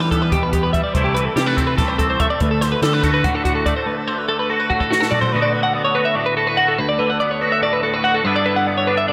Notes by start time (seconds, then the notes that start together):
Already playing: E2 E3 G3
0.00 B4
0.11 B3 A4, kick, closed hi-hat
0.22 B4
0.31 E2 B2 G4, kick, closed hi-hat
0.43 B4
0.53 B3 G4, kick, closed hi-hat
0.63 B4
0.73 G3 E5, kick, closed hi-hat
0.84 D5
0.94 C2 C3 E3 A3 C4 E4 C5, kick, closed hi-hat
1.04 G4
1.15 E3 B4, closed hi-hat
1.25 A4
1.35 C3 G3 G4, snare, closed hi-hat
1.46 A3 B4
1.56 C4 A4, kick, closed hi-hat
1.67 B4
1.77 C2 C3 A4, kick, snare, closed hi-hat
1.88 C5
1.98 C4 A4, kick, closed hi-hat
2.10 C5
2.19 A3 E5, kick, closed hi-hat
2.30 D5
2.40 D2 B4, kick, closed hi-hat
2.51 A4
2.61 D3 C5, snare, closed hi-hat
2.72 B4
2.82 D3 G3 A4, snare, closed hi-hat
2.93 A3 B4
3.03 F#4 A4, kick, closed hi-hat
3.14 B4
3.24 D2 A2 F#4, kick, closed hi-hat
3.35 A4
3.45 F#4, kick, closed hi-hat
3.55 A4
3.66 A3 D5, kick, closed hi-hat
3.76 C5
3.86 D2 B4
3.97 A4
4.07 D3 C5
4.18 B4
4.29 A3 A4
4.39 B4
4.50 F#4 A4
4.60 B4
4.70 A2 F#4, kick
4.80 A4, kick
4.90 F#4, snare
5.01 A4, snare
5.11 A3 D5, floor tom
5.21 C5, floor tom
5.32 D2 D3 B3 F#4 B4
5.42 D5
5.53 D3 B4
5.63 F#5
5.73 B3 D5
5.85 C#5
5.95 F#4 B4
6.05 E5
6.15 A2 D5
6.26 B4
6.37 F#4 A4
6.47 B4
6.57 F#4 F#5
6.68 A4
6.78 D2 B4
6.89 D5
6.99 D3 B4
7.10 F#5
7.20 B3 D5
7.31 C#5
7.41 F#4 B4
7.52 E5
7.61 A2 D5
7.73 B4
7.83 F#4 A4
7.94 B4
8.04 F#4 F#5
8.14 A4
8.24 G2 D3 B3 D4 E4 B4
8.36 D5
8.45 D3 B4
8.56 F#5
8.67 B3 D5
8.78 C#5
8.87 D4 B4
8.97 E5
9.08 D3 D5